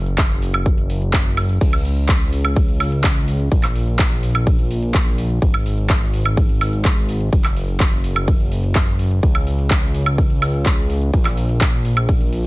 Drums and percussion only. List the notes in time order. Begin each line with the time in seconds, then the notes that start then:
0.06 closed hi-hat
0.18 kick, clap, closed hi-hat
0.30 closed hi-hat
0.42 open hi-hat
0.54 closed hi-hat, high woodblock
0.66 kick, closed hi-hat
0.78 closed hi-hat
0.90 open hi-hat
1.02 closed hi-hat
1.13 kick, clap, closed hi-hat
1.25 closed hi-hat
1.37 open hi-hat, high woodblock
1.49 open hi-hat
1.61 kick, closed hi-hat, crash, ride
1.73 closed hi-hat, high woodblock
1.85 open hi-hat
1.97 closed hi-hat
2.09 kick, clap, closed hi-hat, ride
2.21 closed hi-hat
2.33 open hi-hat
2.45 closed hi-hat, high woodblock
2.56 kick, closed hi-hat, ride
2.68 closed hi-hat
2.80 open hi-hat, high woodblock
2.92 closed hi-hat
3.04 kick, clap, closed hi-hat, ride
3.16 closed hi-hat
3.28 open hi-hat
3.40 closed hi-hat
3.52 kick, closed hi-hat, ride
3.63 clap, closed hi-hat, high woodblock
3.75 open hi-hat
3.87 closed hi-hat
3.99 kick, clap, closed hi-hat, ride
4.11 closed hi-hat
4.23 open hi-hat
4.35 closed hi-hat, high woodblock
4.47 kick, closed hi-hat, ride
4.59 closed hi-hat
4.71 open hi-hat
4.83 closed hi-hat
4.94 kick, clap, closed hi-hat, ride
5.06 closed hi-hat
5.18 open hi-hat
5.30 closed hi-hat
5.42 kick, closed hi-hat, ride
5.54 closed hi-hat, high woodblock
5.66 open hi-hat
5.78 closed hi-hat
5.90 kick, clap, closed hi-hat, ride
6.02 closed hi-hat
6.13 open hi-hat
6.25 closed hi-hat, high woodblock
6.37 kick, closed hi-hat, ride
6.49 closed hi-hat
6.61 open hi-hat, high woodblock
6.73 closed hi-hat
6.85 kick, clap, closed hi-hat, ride
6.97 closed hi-hat
7.09 open hi-hat
7.21 closed hi-hat
7.33 kick, closed hi-hat, ride
7.44 clap, closed hi-hat, high woodblock
7.56 open hi-hat
7.68 closed hi-hat
7.80 kick, clap, closed hi-hat, ride
7.92 closed hi-hat
8.04 open hi-hat
8.16 closed hi-hat, high woodblock
8.28 kick, closed hi-hat, ride
8.40 closed hi-hat
8.52 open hi-hat
8.64 closed hi-hat
8.75 kick, clap, closed hi-hat, ride
8.87 closed hi-hat
8.99 open hi-hat
9.11 closed hi-hat
9.23 kick, closed hi-hat, ride
9.35 closed hi-hat, high woodblock
9.47 open hi-hat
9.59 closed hi-hat
9.71 kick, clap, closed hi-hat, ride
9.83 closed hi-hat
9.94 open hi-hat
10.06 closed hi-hat, high woodblock
10.18 kick, closed hi-hat, ride
10.30 closed hi-hat
10.42 open hi-hat, high woodblock
10.54 closed hi-hat
10.66 kick, clap, closed hi-hat, ride
10.78 closed hi-hat
10.90 open hi-hat
11.02 closed hi-hat
11.13 kick, closed hi-hat, ride
11.25 clap, closed hi-hat, high woodblock
11.37 open hi-hat
11.49 closed hi-hat
11.61 kick, clap, closed hi-hat, ride
11.73 closed hi-hat
11.85 open hi-hat
11.97 closed hi-hat, high woodblock
12.09 kick, closed hi-hat, ride
12.21 closed hi-hat
12.33 open hi-hat